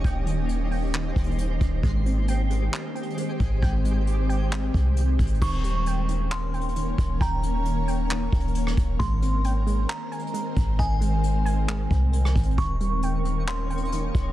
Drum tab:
CC |------------------------------------------------|------------------------------------------------|------------------------------------------------|x-----------------------------------------------|
HH |x-----x-----x-----o-----------x-x-x-x-----x-----|x-----x-----x-----x-----x-----x-x-x-x-----x-----|x-----x-----x-----x-----x-----x-----x-----x-x-x-|------x-----x-----x-----x-----x-x-x-x-----x-----|
CP |------------------------x-----------------------|------------------------x-----------------------|------------------------x-----------------------|------------------------x-----------------------|
SD |------------------------------------------------|------------------------------------------------|------------------------------------------------|------------------------------------------------|
BD |o-----------------------------o-----------o-----|o-----------------------------------------o-----|o-----------------------------o-----------o-----|o-----------------------------------------o-----|

CC |------------------------------------------------|------------------------------------------------|------------------------------------------------|------------------------------------------------|
HH |x-----x-----x-----x-----x-----x-x-x-x-----x-----|x-----x-----x-----x-----x-----x-x-x-x-----x-----|x-----x-----x-----x-----x-----x-----x-----x-x-x-|x-----x-----x-----x-----x-----x-x-x-x-----x-----|
CP |------------------------x-----------------------|------------------------x-----------------------|------------------------x-----------------------|------------------------x-----------------------|
SD |---------------------------------------r--------|------------------------------------------------|---------------------------------------r--------|------------------------------------------------|
BD |o-----------------------------o-----------o-----|o-----------------------------------------o-----|o-----------------------------o-----------o-----|o-----------------------------------------o-----|